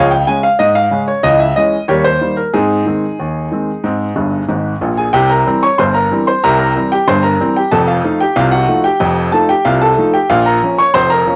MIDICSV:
0, 0, Header, 1, 2, 480
1, 0, Start_track
1, 0, Tempo, 646552
1, 917, Time_signature, 2, 2, 24, 8
1, 8432, End_track
2, 0, Start_track
2, 0, Title_t, "Grand piano"
2, 0, Program_c, 0, 0
2, 0, Note_on_c, 0, 37, 90
2, 0, Note_on_c, 0, 53, 58
2, 0, Note_on_c, 0, 68, 78
2, 0, Note_on_c, 0, 73, 81
2, 0, Note_on_c, 0, 77, 101
2, 79, Note_off_c, 0, 68, 0
2, 79, Note_off_c, 0, 73, 0
2, 82, Note_off_c, 0, 77, 0
2, 82, Note_on_c, 0, 79, 82
2, 107, Note_off_c, 0, 53, 0
2, 167, Note_off_c, 0, 37, 0
2, 202, Note_off_c, 0, 79, 0
2, 202, Note_on_c, 0, 49, 51
2, 203, Note_on_c, 0, 80, 89
2, 207, Note_on_c, 0, 56, 49
2, 210, Note_on_c, 0, 61, 51
2, 322, Note_off_c, 0, 80, 0
2, 322, Note_on_c, 0, 77, 84
2, 333, Note_off_c, 0, 49, 0
2, 336, Note_off_c, 0, 56, 0
2, 339, Note_off_c, 0, 61, 0
2, 438, Note_on_c, 0, 75, 88
2, 441, Note_off_c, 0, 77, 0
2, 442, Note_on_c, 0, 44, 71
2, 558, Note_off_c, 0, 75, 0
2, 558, Note_on_c, 0, 77, 90
2, 644, Note_off_c, 0, 44, 0
2, 676, Note_on_c, 0, 49, 48
2, 681, Note_on_c, 0, 56, 49
2, 682, Note_on_c, 0, 61, 50
2, 749, Note_off_c, 0, 77, 0
2, 799, Note_on_c, 0, 73, 67
2, 808, Note_off_c, 0, 49, 0
2, 811, Note_off_c, 0, 56, 0
2, 812, Note_off_c, 0, 61, 0
2, 915, Note_on_c, 0, 75, 101
2, 918, Note_off_c, 0, 73, 0
2, 918, Note_on_c, 0, 37, 89
2, 932, Note_on_c, 0, 52, 51
2, 1035, Note_off_c, 0, 75, 0
2, 1038, Note_on_c, 0, 76, 71
2, 1060, Note_off_c, 0, 52, 0
2, 1121, Note_off_c, 0, 37, 0
2, 1157, Note_off_c, 0, 76, 0
2, 1159, Note_on_c, 0, 75, 92
2, 1163, Note_on_c, 0, 52, 43
2, 1164, Note_on_c, 0, 56, 45
2, 1168, Note_on_c, 0, 61, 51
2, 1293, Note_off_c, 0, 52, 0
2, 1294, Note_off_c, 0, 56, 0
2, 1297, Note_off_c, 0, 61, 0
2, 1350, Note_off_c, 0, 75, 0
2, 1396, Note_on_c, 0, 73, 73
2, 1399, Note_on_c, 0, 39, 74
2, 1403, Note_on_c, 0, 67, 66
2, 1404, Note_on_c, 0, 70, 58
2, 1414, Note_on_c, 0, 55, 41
2, 1512, Note_off_c, 0, 67, 0
2, 1512, Note_off_c, 0, 70, 0
2, 1517, Note_off_c, 0, 73, 0
2, 1518, Note_on_c, 0, 72, 80
2, 1542, Note_off_c, 0, 55, 0
2, 1602, Note_off_c, 0, 39, 0
2, 1643, Note_on_c, 0, 51, 37
2, 1645, Note_on_c, 0, 55, 41
2, 1649, Note_on_c, 0, 58, 39
2, 1746, Note_off_c, 0, 72, 0
2, 1758, Note_on_c, 0, 70, 61
2, 1774, Note_off_c, 0, 51, 0
2, 1776, Note_off_c, 0, 55, 0
2, 1779, Note_off_c, 0, 58, 0
2, 1879, Note_off_c, 0, 70, 0
2, 1882, Note_on_c, 0, 68, 72
2, 1885, Note_on_c, 0, 44, 73
2, 1891, Note_on_c, 0, 60, 53
2, 1891, Note_on_c, 0, 63, 53
2, 2088, Note_off_c, 0, 44, 0
2, 2119, Note_off_c, 0, 60, 0
2, 2124, Note_on_c, 0, 51, 36
2, 2129, Note_on_c, 0, 56, 36
2, 2130, Note_on_c, 0, 60, 40
2, 2256, Note_off_c, 0, 51, 0
2, 2260, Note_off_c, 0, 56, 0
2, 2261, Note_off_c, 0, 60, 0
2, 2372, Note_on_c, 0, 39, 54
2, 2573, Note_off_c, 0, 39, 0
2, 2611, Note_on_c, 0, 51, 34
2, 2617, Note_on_c, 0, 56, 33
2, 2618, Note_on_c, 0, 60, 38
2, 2742, Note_off_c, 0, 51, 0
2, 2746, Note_off_c, 0, 56, 0
2, 2747, Note_off_c, 0, 60, 0
2, 2849, Note_on_c, 0, 44, 66
2, 2863, Note_on_c, 0, 60, 45
2, 2991, Note_off_c, 0, 60, 0
2, 3053, Note_off_c, 0, 44, 0
2, 3086, Note_on_c, 0, 43, 59
2, 3088, Note_on_c, 0, 31, 55
2, 3268, Note_off_c, 0, 43, 0
2, 3269, Note_off_c, 0, 31, 0
2, 3301, Note_off_c, 0, 68, 0
2, 3306, Note_off_c, 0, 63, 0
2, 3330, Note_on_c, 0, 32, 53
2, 3331, Note_on_c, 0, 44, 52
2, 3512, Note_off_c, 0, 32, 0
2, 3512, Note_off_c, 0, 44, 0
2, 3573, Note_on_c, 0, 34, 56
2, 3574, Note_on_c, 0, 46, 61
2, 3693, Note_on_c, 0, 80, 64
2, 3701, Note_on_c, 0, 68, 47
2, 3753, Note_off_c, 0, 34, 0
2, 3754, Note_off_c, 0, 46, 0
2, 3809, Note_off_c, 0, 68, 0
2, 3809, Note_on_c, 0, 79, 100
2, 3811, Note_on_c, 0, 36, 74
2, 3813, Note_off_c, 0, 80, 0
2, 3813, Note_on_c, 0, 48, 80
2, 3817, Note_on_c, 0, 67, 66
2, 3927, Note_off_c, 0, 67, 0
2, 3931, Note_off_c, 0, 79, 0
2, 3932, Note_on_c, 0, 82, 78
2, 3938, Note_on_c, 0, 70, 60
2, 4016, Note_off_c, 0, 36, 0
2, 4017, Note_off_c, 0, 48, 0
2, 4056, Note_on_c, 0, 52, 49
2, 4057, Note_on_c, 0, 55, 47
2, 4063, Note_on_c, 0, 60, 54
2, 4159, Note_off_c, 0, 70, 0
2, 4160, Note_off_c, 0, 82, 0
2, 4178, Note_on_c, 0, 85, 86
2, 4186, Note_on_c, 0, 73, 64
2, 4187, Note_off_c, 0, 52, 0
2, 4188, Note_off_c, 0, 55, 0
2, 4192, Note_off_c, 0, 60, 0
2, 4292, Note_off_c, 0, 73, 0
2, 4293, Note_on_c, 0, 84, 76
2, 4295, Note_off_c, 0, 85, 0
2, 4298, Note_on_c, 0, 43, 73
2, 4299, Note_on_c, 0, 31, 70
2, 4304, Note_on_c, 0, 72, 58
2, 4410, Note_off_c, 0, 72, 0
2, 4413, Note_off_c, 0, 84, 0
2, 4413, Note_on_c, 0, 82, 88
2, 4421, Note_on_c, 0, 70, 65
2, 4500, Note_off_c, 0, 31, 0
2, 4500, Note_off_c, 0, 43, 0
2, 4538, Note_on_c, 0, 52, 50
2, 4539, Note_on_c, 0, 55, 51
2, 4544, Note_on_c, 0, 60, 49
2, 4604, Note_off_c, 0, 82, 0
2, 4640, Note_off_c, 0, 70, 0
2, 4657, Note_on_c, 0, 84, 74
2, 4662, Note_on_c, 0, 72, 57
2, 4669, Note_off_c, 0, 52, 0
2, 4669, Note_off_c, 0, 55, 0
2, 4673, Note_off_c, 0, 60, 0
2, 4769, Note_off_c, 0, 72, 0
2, 4775, Note_off_c, 0, 84, 0
2, 4779, Note_on_c, 0, 48, 80
2, 4779, Note_on_c, 0, 82, 103
2, 4781, Note_on_c, 0, 36, 77
2, 4787, Note_on_c, 0, 70, 72
2, 4882, Note_off_c, 0, 82, 0
2, 4892, Note_off_c, 0, 70, 0
2, 4893, Note_on_c, 0, 82, 85
2, 4903, Note_on_c, 0, 70, 58
2, 4980, Note_off_c, 0, 48, 0
2, 4981, Note_off_c, 0, 36, 0
2, 5019, Note_on_c, 0, 52, 43
2, 5021, Note_on_c, 0, 55, 45
2, 5023, Note_on_c, 0, 60, 48
2, 5084, Note_off_c, 0, 82, 0
2, 5120, Note_off_c, 0, 70, 0
2, 5137, Note_on_c, 0, 79, 83
2, 5143, Note_on_c, 0, 67, 61
2, 5149, Note_off_c, 0, 52, 0
2, 5150, Note_off_c, 0, 55, 0
2, 5151, Note_off_c, 0, 60, 0
2, 5249, Note_off_c, 0, 67, 0
2, 5254, Note_off_c, 0, 79, 0
2, 5254, Note_on_c, 0, 31, 73
2, 5254, Note_on_c, 0, 84, 86
2, 5255, Note_on_c, 0, 43, 71
2, 5263, Note_on_c, 0, 72, 68
2, 5368, Note_on_c, 0, 82, 84
2, 5369, Note_off_c, 0, 72, 0
2, 5372, Note_off_c, 0, 84, 0
2, 5376, Note_on_c, 0, 70, 64
2, 5456, Note_off_c, 0, 31, 0
2, 5457, Note_off_c, 0, 43, 0
2, 5495, Note_on_c, 0, 52, 51
2, 5497, Note_on_c, 0, 55, 44
2, 5501, Note_on_c, 0, 60, 52
2, 5597, Note_off_c, 0, 70, 0
2, 5597, Note_off_c, 0, 82, 0
2, 5617, Note_on_c, 0, 79, 67
2, 5626, Note_off_c, 0, 52, 0
2, 5626, Note_on_c, 0, 67, 51
2, 5627, Note_off_c, 0, 55, 0
2, 5630, Note_off_c, 0, 60, 0
2, 5728, Note_on_c, 0, 81, 98
2, 5730, Note_off_c, 0, 67, 0
2, 5732, Note_on_c, 0, 29, 78
2, 5732, Note_on_c, 0, 41, 82
2, 5733, Note_off_c, 0, 79, 0
2, 5737, Note_on_c, 0, 69, 80
2, 5846, Note_off_c, 0, 69, 0
2, 5847, Note_on_c, 0, 77, 69
2, 5849, Note_off_c, 0, 81, 0
2, 5857, Note_on_c, 0, 65, 59
2, 5935, Note_off_c, 0, 29, 0
2, 5935, Note_off_c, 0, 41, 0
2, 5971, Note_on_c, 0, 53, 54
2, 5973, Note_on_c, 0, 57, 47
2, 5976, Note_on_c, 0, 63, 55
2, 6076, Note_off_c, 0, 65, 0
2, 6076, Note_off_c, 0, 77, 0
2, 6091, Note_on_c, 0, 79, 78
2, 6101, Note_on_c, 0, 67, 62
2, 6102, Note_off_c, 0, 53, 0
2, 6104, Note_off_c, 0, 57, 0
2, 6106, Note_off_c, 0, 63, 0
2, 6206, Note_on_c, 0, 77, 88
2, 6207, Note_off_c, 0, 67, 0
2, 6208, Note_on_c, 0, 36, 79
2, 6208, Note_on_c, 0, 48, 75
2, 6210, Note_off_c, 0, 79, 0
2, 6213, Note_on_c, 0, 65, 68
2, 6321, Note_on_c, 0, 78, 88
2, 6322, Note_off_c, 0, 65, 0
2, 6327, Note_off_c, 0, 77, 0
2, 6330, Note_on_c, 0, 66, 63
2, 6412, Note_off_c, 0, 36, 0
2, 6412, Note_off_c, 0, 48, 0
2, 6443, Note_on_c, 0, 53, 56
2, 6449, Note_on_c, 0, 57, 51
2, 6451, Note_on_c, 0, 63, 46
2, 6516, Note_off_c, 0, 78, 0
2, 6552, Note_off_c, 0, 66, 0
2, 6563, Note_on_c, 0, 79, 80
2, 6573, Note_on_c, 0, 67, 62
2, 6576, Note_off_c, 0, 53, 0
2, 6581, Note_off_c, 0, 57, 0
2, 6582, Note_off_c, 0, 63, 0
2, 6682, Note_on_c, 0, 29, 76
2, 6684, Note_on_c, 0, 41, 89
2, 6852, Note_off_c, 0, 79, 0
2, 6889, Note_off_c, 0, 29, 0
2, 6889, Note_off_c, 0, 41, 0
2, 6905, Note_off_c, 0, 67, 0
2, 6920, Note_on_c, 0, 81, 87
2, 6924, Note_on_c, 0, 53, 50
2, 6928, Note_on_c, 0, 57, 51
2, 6930, Note_on_c, 0, 69, 65
2, 6931, Note_on_c, 0, 63, 51
2, 7040, Note_off_c, 0, 69, 0
2, 7044, Note_off_c, 0, 81, 0
2, 7044, Note_on_c, 0, 79, 83
2, 7054, Note_on_c, 0, 67, 63
2, 7057, Note_off_c, 0, 53, 0
2, 7060, Note_off_c, 0, 57, 0
2, 7062, Note_off_c, 0, 63, 0
2, 7162, Note_off_c, 0, 67, 0
2, 7162, Note_on_c, 0, 77, 86
2, 7165, Note_off_c, 0, 79, 0
2, 7166, Note_on_c, 0, 36, 72
2, 7166, Note_on_c, 0, 48, 72
2, 7174, Note_on_c, 0, 65, 68
2, 7282, Note_off_c, 0, 65, 0
2, 7284, Note_off_c, 0, 77, 0
2, 7286, Note_on_c, 0, 81, 87
2, 7294, Note_on_c, 0, 69, 68
2, 7370, Note_off_c, 0, 36, 0
2, 7370, Note_off_c, 0, 48, 0
2, 7407, Note_on_c, 0, 53, 52
2, 7410, Note_on_c, 0, 57, 52
2, 7415, Note_on_c, 0, 63, 52
2, 7478, Note_off_c, 0, 81, 0
2, 7514, Note_off_c, 0, 69, 0
2, 7524, Note_on_c, 0, 79, 71
2, 7531, Note_on_c, 0, 67, 61
2, 7539, Note_off_c, 0, 53, 0
2, 7541, Note_off_c, 0, 57, 0
2, 7545, Note_off_c, 0, 63, 0
2, 7640, Note_off_c, 0, 67, 0
2, 7643, Note_on_c, 0, 34, 78
2, 7643, Note_on_c, 0, 77, 89
2, 7644, Note_on_c, 0, 46, 97
2, 7645, Note_off_c, 0, 79, 0
2, 7652, Note_on_c, 0, 65, 68
2, 7760, Note_off_c, 0, 65, 0
2, 7764, Note_off_c, 0, 77, 0
2, 7764, Note_on_c, 0, 82, 88
2, 7772, Note_on_c, 0, 70, 62
2, 7848, Note_off_c, 0, 34, 0
2, 7848, Note_off_c, 0, 46, 0
2, 7892, Note_on_c, 0, 53, 47
2, 7893, Note_on_c, 0, 58, 50
2, 7897, Note_on_c, 0, 61, 57
2, 7992, Note_off_c, 0, 70, 0
2, 7992, Note_off_c, 0, 82, 0
2, 8006, Note_on_c, 0, 85, 101
2, 8017, Note_on_c, 0, 73, 75
2, 8021, Note_off_c, 0, 53, 0
2, 8022, Note_off_c, 0, 58, 0
2, 8025, Note_off_c, 0, 61, 0
2, 8121, Note_on_c, 0, 84, 108
2, 8122, Note_off_c, 0, 73, 0
2, 8123, Note_on_c, 0, 41, 75
2, 8125, Note_off_c, 0, 85, 0
2, 8125, Note_on_c, 0, 29, 79
2, 8128, Note_on_c, 0, 72, 79
2, 8238, Note_off_c, 0, 72, 0
2, 8241, Note_on_c, 0, 82, 96
2, 8242, Note_off_c, 0, 84, 0
2, 8253, Note_on_c, 0, 70, 72
2, 8327, Note_off_c, 0, 41, 0
2, 8328, Note_off_c, 0, 29, 0
2, 8363, Note_on_c, 0, 53, 51
2, 8366, Note_on_c, 0, 58, 49
2, 8370, Note_on_c, 0, 61, 60
2, 8432, Note_off_c, 0, 53, 0
2, 8432, Note_off_c, 0, 58, 0
2, 8432, Note_off_c, 0, 61, 0
2, 8432, Note_off_c, 0, 70, 0
2, 8432, Note_off_c, 0, 82, 0
2, 8432, End_track
0, 0, End_of_file